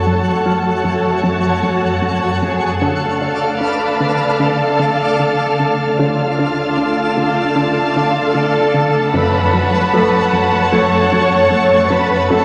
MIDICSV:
0, 0, Header, 1, 10, 480
1, 0, Start_track
1, 0, Key_signature, 3, "minor"
1, 0, Tempo, 789474
1, 1718, Time_signature, 4, 2, 24, 8
1, 7568, End_track
2, 0, Start_track
2, 0, Title_t, "Violin section"
2, 0, Program_c, 0, 48
2, 1720, Note_on_c, 0, 89, 31
2, 1722, Note_on_c, 0, 93, 32
2, 4815, Note_off_c, 0, 93, 0
2, 5294, Note_off_c, 0, 89, 0
2, 5564, Note_on_c, 0, 73, 43
2, 6045, Note_on_c, 0, 93, 43
2, 7568, Note_off_c, 0, 73, 0
2, 7568, Note_off_c, 0, 93, 0
2, 7568, End_track
3, 0, Start_track
3, 0, Title_t, "Violin section"
3, 0, Program_c, 1, 48
3, 0, Note_on_c, 1, 81, 53
3, 737, Note_off_c, 1, 81, 0
3, 751, Note_on_c, 1, 78, 43
3, 1469, Note_on_c, 1, 80, 42
3, 1474, Note_off_c, 1, 78, 0
3, 1710, Note_on_c, 1, 81, 44
3, 1713, Note_off_c, 1, 80, 0
3, 2184, Note_off_c, 1, 81, 0
3, 2191, Note_on_c, 1, 83, 52
3, 2674, Note_off_c, 1, 83, 0
3, 2674, Note_on_c, 1, 81, 57
3, 3635, Note_on_c, 1, 77, 59
3, 3636, Note_off_c, 1, 81, 0
3, 4577, Note_off_c, 1, 77, 0
3, 4587, Note_on_c, 1, 77, 56
3, 5062, Note_off_c, 1, 77, 0
3, 5064, Note_on_c, 1, 81, 62
3, 5550, Note_off_c, 1, 81, 0
3, 5553, Note_on_c, 1, 83, 74
3, 6496, Note_off_c, 1, 83, 0
3, 6511, Note_on_c, 1, 85, 70
3, 7220, Note_off_c, 1, 85, 0
3, 7236, Note_on_c, 1, 83, 63
3, 7477, Note_off_c, 1, 83, 0
3, 7477, Note_on_c, 1, 81, 84
3, 7568, Note_off_c, 1, 81, 0
3, 7568, End_track
4, 0, Start_track
4, 0, Title_t, "Violin section"
4, 0, Program_c, 2, 48
4, 0, Note_on_c, 2, 73, 40
4, 0, Note_on_c, 2, 81, 42
4, 1690, Note_off_c, 2, 73, 0
4, 1692, Note_off_c, 2, 81, 0
4, 1719, Note_on_c, 2, 77, 42
4, 1720, Note_on_c, 2, 81, 43
4, 3614, Note_off_c, 2, 77, 0
4, 3614, Note_off_c, 2, 81, 0
4, 3635, Note_on_c, 2, 81, 53
4, 3636, Note_on_c, 2, 77, 52
4, 5532, Note_off_c, 2, 77, 0
4, 5532, Note_off_c, 2, 81, 0
4, 5554, Note_on_c, 2, 78, 51
4, 5556, Note_on_c, 2, 81, 55
4, 7451, Note_off_c, 2, 78, 0
4, 7452, Note_off_c, 2, 81, 0
4, 7485, Note_on_c, 2, 81, 54
4, 7486, Note_on_c, 2, 78, 58
4, 7568, Note_off_c, 2, 78, 0
4, 7568, Note_off_c, 2, 81, 0
4, 7568, End_track
5, 0, Start_track
5, 0, Title_t, "Celesta"
5, 0, Program_c, 3, 8
5, 0, Control_c, 3, 64, 127
5, 0, Note_on_c, 3, 78, 35
5, 279, Note_on_c, 3, 89, 31
5, 975, Note_off_c, 3, 78, 0
5, 1694, Note_off_c, 3, 89, 0
5, 1729, Control_c, 3, 64, 0
5, 1833, Control_c, 3, 64, 127
5, 3636, Note_on_c, 3, 73, 39
5, 5052, Note_off_c, 3, 73, 0
5, 5568, Control_c, 3, 64, 0
5, 5671, Control_c, 3, 64, 127
5, 6041, Note_on_c, 3, 69, 53
5, 6520, Note_on_c, 3, 92, 54
5, 7455, Note_off_c, 3, 69, 0
5, 7568, Note_off_c, 3, 92, 0
5, 7568, End_track
6, 0, Start_track
6, 0, Title_t, "Synth texture"
6, 0, Program_c, 4, 99
6, 0, Note_on_c, 4, 66, 47
6, 0, Note_on_c, 4, 73, 45
6, 0, Note_on_c, 4, 78, 43
6, 1694, Note_off_c, 4, 78, 0
6, 1695, Note_off_c, 4, 66, 0
6, 1696, Note_off_c, 4, 73, 0
6, 1719, Note_on_c, 4, 74, 48
6, 1721, Note_on_c, 4, 69, 44
6, 1721, Note_on_c, 4, 77, 44
6, 3615, Note_off_c, 4, 69, 0
6, 3628, Note_off_c, 4, 77, 0
6, 3634, Note_on_c, 4, 62, 44
6, 3635, Note_on_c, 4, 69, 47
6, 3636, Note_on_c, 4, 77, 46
6, 3638, Note_off_c, 4, 74, 0
6, 5531, Note_off_c, 4, 62, 0
6, 5532, Note_off_c, 4, 69, 0
6, 5532, Note_off_c, 4, 77, 0
6, 5558, Note_on_c, 4, 73, 47
6, 5559, Note_on_c, 4, 69, 51
6, 5560, Note_on_c, 4, 78, 46
6, 7454, Note_off_c, 4, 69, 0
6, 7467, Note_off_c, 4, 78, 0
6, 7470, Note_off_c, 4, 73, 0
6, 7475, Note_on_c, 4, 69, 50
6, 7475, Note_on_c, 4, 78, 48
6, 7477, Note_on_c, 4, 73, 52
6, 7568, Note_off_c, 4, 69, 0
6, 7568, Note_off_c, 4, 73, 0
6, 7568, Note_off_c, 4, 78, 0
6, 7568, End_track
7, 0, Start_track
7, 0, Title_t, "Cello section"
7, 0, Program_c, 5, 48
7, 0, Note_on_c, 5, 69, 49
7, 737, Note_off_c, 5, 69, 0
7, 756, Note_on_c, 5, 66, 48
7, 1477, Note_off_c, 5, 66, 0
7, 1478, Note_on_c, 5, 68, 49
7, 1717, Note_off_c, 5, 68, 0
7, 1719, Note_on_c, 5, 69, 44
7, 2196, Note_on_c, 5, 71, 59
7, 2198, Note_off_c, 5, 69, 0
7, 2667, Note_off_c, 5, 71, 0
7, 2675, Note_on_c, 5, 69, 59
7, 3636, Note_off_c, 5, 69, 0
7, 3636, Note_on_c, 5, 65, 61
7, 4577, Note_off_c, 5, 65, 0
7, 4593, Note_on_c, 5, 65, 61
7, 5065, Note_off_c, 5, 65, 0
7, 5073, Note_on_c, 5, 69, 73
7, 5555, Note_off_c, 5, 69, 0
7, 5557, Note_on_c, 5, 71, 77
7, 6517, Note_off_c, 5, 71, 0
7, 6517, Note_on_c, 5, 73, 84
7, 7236, Note_on_c, 5, 71, 76
7, 7237, Note_off_c, 5, 73, 0
7, 7474, Note_on_c, 5, 69, 77
7, 7477, Note_off_c, 5, 71, 0
7, 7568, Note_off_c, 5, 69, 0
7, 7568, End_track
8, 0, Start_track
8, 0, Title_t, "Viola section"
8, 0, Program_c, 6, 48
8, 0, Note_on_c, 6, 57, 42
8, 0, Note_on_c, 6, 66, 39
8, 1693, Note_off_c, 6, 57, 0
8, 1693, Note_off_c, 6, 66, 0
8, 1716, Note_on_c, 6, 57, 44
8, 1716, Note_on_c, 6, 69, 44
8, 3612, Note_off_c, 6, 57, 0
8, 3612, Note_off_c, 6, 69, 0
8, 3635, Note_on_c, 6, 69, 52
8, 3636, Note_on_c, 6, 57, 51
8, 5532, Note_off_c, 6, 57, 0
8, 5532, Note_off_c, 6, 69, 0
8, 5550, Note_on_c, 6, 57, 61
8, 5552, Note_on_c, 6, 69, 58
8, 5665, Note_off_c, 6, 57, 0
8, 5666, Note_off_c, 6, 69, 0
8, 5675, Note_on_c, 6, 57, 38
8, 5675, Note_on_c, 6, 61, 37
8, 5724, Note_off_c, 6, 57, 0
8, 5724, Note_off_c, 6, 61, 0
8, 5796, Note_on_c, 6, 66, 41
8, 5798, Note_on_c, 6, 57, 41
8, 5845, Note_off_c, 6, 66, 0
8, 5846, Note_off_c, 6, 57, 0
8, 5913, Note_on_c, 6, 57, 40
8, 5914, Note_on_c, 6, 61, 46
8, 5961, Note_off_c, 6, 57, 0
8, 5963, Note_off_c, 6, 61, 0
8, 6033, Note_on_c, 6, 57, 59
8, 6033, Note_on_c, 6, 69, 60
8, 6147, Note_off_c, 6, 57, 0
8, 6147, Note_off_c, 6, 69, 0
8, 6153, Note_on_c, 6, 57, 40
8, 6155, Note_on_c, 6, 61, 38
8, 6201, Note_off_c, 6, 57, 0
8, 6203, Note_off_c, 6, 61, 0
8, 6274, Note_on_c, 6, 66, 46
8, 6276, Note_on_c, 6, 57, 48
8, 6323, Note_off_c, 6, 66, 0
8, 6324, Note_off_c, 6, 57, 0
8, 6393, Note_on_c, 6, 57, 50
8, 6393, Note_on_c, 6, 61, 47
8, 6442, Note_off_c, 6, 57, 0
8, 6442, Note_off_c, 6, 61, 0
8, 6512, Note_on_c, 6, 57, 62
8, 6512, Note_on_c, 6, 69, 59
8, 6626, Note_off_c, 6, 57, 0
8, 6626, Note_off_c, 6, 69, 0
8, 6634, Note_on_c, 6, 61, 44
8, 6635, Note_on_c, 6, 57, 51
8, 6682, Note_off_c, 6, 61, 0
8, 6683, Note_off_c, 6, 57, 0
8, 6753, Note_on_c, 6, 66, 48
8, 6755, Note_on_c, 6, 57, 45
8, 6802, Note_off_c, 6, 66, 0
8, 6803, Note_off_c, 6, 57, 0
8, 6875, Note_on_c, 6, 57, 51
8, 6875, Note_on_c, 6, 61, 51
8, 6923, Note_off_c, 6, 57, 0
8, 6923, Note_off_c, 6, 61, 0
8, 6994, Note_on_c, 6, 57, 68
8, 6994, Note_on_c, 6, 69, 59
8, 7107, Note_off_c, 6, 57, 0
8, 7107, Note_off_c, 6, 69, 0
8, 7114, Note_on_c, 6, 57, 53
8, 7114, Note_on_c, 6, 61, 50
8, 7162, Note_off_c, 6, 57, 0
8, 7162, Note_off_c, 6, 61, 0
8, 7232, Note_on_c, 6, 66, 45
8, 7233, Note_on_c, 6, 57, 46
8, 7281, Note_off_c, 6, 57, 0
8, 7281, Note_off_c, 6, 66, 0
8, 7354, Note_on_c, 6, 57, 56
8, 7354, Note_on_c, 6, 61, 50
8, 7402, Note_off_c, 6, 61, 0
8, 7403, Note_off_c, 6, 57, 0
8, 7472, Note_on_c, 6, 57, 65
8, 7474, Note_on_c, 6, 69, 68
8, 7568, Note_off_c, 6, 57, 0
8, 7568, Note_off_c, 6, 69, 0
8, 7568, End_track
9, 0, Start_track
9, 0, Title_t, "Analog synth bass"
9, 0, Program_c, 7, 38
9, 40, Note_on_c, 7, 54, 49
9, 183, Note_off_c, 7, 54, 0
9, 277, Note_on_c, 7, 54, 47
9, 421, Note_off_c, 7, 54, 0
9, 511, Note_on_c, 7, 42, 48
9, 657, Note_off_c, 7, 42, 0
9, 750, Note_on_c, 7, 42, 64
9, 896, Note_off_c, 7, 42, 0
9, 989, Note_on_c, 7, 42, 50
9, 1136, Note_off_c, 7, 42, 0
9, 1227, Note_on_c, 7, 42, 47
9, 1374, Note_off_c, 7, 42, 0
9, 1473, Note_on_c, 7, 42, 49
9, 1618, Note_off_c, 7, 42, 0
9, 1712, Note_on_c, 7, 50, 70
9, 1858, Note_off_c, 7, 50, 0
9, 1954, Note_on_c, 7, 62, 49
9, 2099, Note_off_c, 7, 62, 0
9, 2191, Note_on_c, 7, 62, 46
9, 2337, Note_off_c, 7, 62, 0
9, 2434, Note_on_c, 7, 50, 52
9, 2579, Note_off_c, 7, 50, 0
9, 2674, Note_on_c, 7, 50, 69
9, 2819, Note_off_c, 7, 50, 0
9, 2914, Note_on_c, 7, 50, 50
9, 3059, Note_off_c, 7, 50, 0
9, 3159, Note_on_c, 7, 50, 46
9, 3302, Note_off_c, 7, 50, 0
9, 3403, Note_on_c, 7, 50, 49
9, 3545, Note_off_c, 7, 50, 0
9, 3644, Note_on_c, 7, 50, 72
9, 3786, Note_off_c, 7, 50, 0
9, 3885, Note_on_c, 7, 62, 53
9, 4026, Note_off_c, 7, 62, 0
9, 4120, Note_on_c, 7, 62, 49
9, 4263, Note_off_c, 7, 62, 0
9, 4360, Note_on_c, 7, 50, 54
9, 4503, Note_off_c, 7, 50, 0
9, 4595, Note_on_c, 7, 50, 70
9, 4740, Note_off_c, 7, 50, 0
9, 4841, Note_on_c, 7, 50, 56
9, 4984, Note_off_c, 7, 50, 0
9, 5075, Note_on_c, 7, 50, 49
9, 5220, Note_off_c, 7, 50, 0
9, 5314, Note_on_c, 7, 50, 52
9, 5459, Note_off_c, 7, 50, 0
9, 5557, Note_on_c, 7, 42, 77
9, 5701, Note_off_c, 7, 42, 0
9, 5797, Note_on_c, 7, 54, 53
9, 5941, Note_off_c, 7, 54, 0
9, 6042, Note_on_c, 7, 54, 51
9, 6184, Note_off_c, 7, 54, 0
9, 6281, Note_on_c, 7, 42, 51
9, 6424, Note_off_c, 7, 42, 0
9, 6521, Note_on_c, 7, 42, 71
9, 6664, Note_off_c, 7, 42, 0
9, 6762, Note_on_c, 7, 42, 57
9, 6905, Note_off_c, 7, 42, 0
9, 6994, Note_on_c, 7, 42, 55
9, 7139, Note_off_c, 7, 42, 0
9, 7237, Note_on_c, 7, 42, 52
9, 7381, Note_off_c, 7, 42, 0
9, 7480, Note_on_c, 7, 42, 76
9, 7568, Note_off_c, 7, 42, 0
9, 7568, End_track
10, 0, Start_track
10, 0, Title_t, "Double bass section"
10, 0, Program_c, 8, 48
10, 0, Note_on_c, 8, 42, 36
10, 1694, Note_off_c, 8, 42, 0
10, 1719, Note_on_c, 8, 38, 40
10, 3614, Note_off_c, 8, 38, 0
10, 3641, Note_on_c, 8, 38, 48
10, 5535, Note_off_c, 8, 38, 0
10, 5557, Note_on_c, 8, 42, 61
10, 5605, Note_off_c, 8, 42, 0
10, 5673, Note_on_c, 8, 42, 44
10, 5722, Note_off_c, 8, 42, 0
10, 5799, Note_on_c, 8, 42, 45
10, 5846, Note_off_c, 8, 42, 0
10, 5918, Note_on_c, 8, 42, 47
10, 5966, Note_off_c, 8, 42, 0
10, 6041, Note_on_c, 8, 42, 63
10, 6088, Note_off_c, 8, 42, 0
10, 6156, Note_on_c, 8, 42, 49
10, 6205, Note_off_c, 8, 42, 0
10, 6281, Note_on_c, 8, 42, 44
10, 6328, Note_off_c, 8, 42, 0
10, 6401, Note_on_c, 8, 42, 42
10, 6448, Note_off_c, 8, 42, 0
10, 6520, Note_on_c, 8, 42, 60
10, 6568, Note_off_c, 8, 42, 0
10, 6638, Note_on_c, 8, 42, 47
10, 6686, Note_off_c, 8, 42, 0
10, 6758, Note_on_c, 8, 42, 44
10, 6806, Note_off_c, 8, 42, 0
10, 6877, Note_on_c, 8, 42, 48
10, 6925, Note_off_c, 8, 42, 0
10, 6997, Note_on_c, 8, 42, 64
10, 7045, Note_off_c, 8, 42, 0
10, 7116, Note_on_c, 8, 42, 50
10, 7164, Note_off_c, 8, 42, 0
10, 7236, Note_on_c, 8, 42, 45
10, 7284, Note_off_c, 8, 42, 0
10, 7355, Note_on_c, 8, 42, 47
10, 7404, Note_off_c, 8, 42, 0
10, 7478, Note_on_c, 8, 42, 63
10, 7526, Note_off_c, 8, 42, 0
10, 7568, End_track
0, 0, End_of_file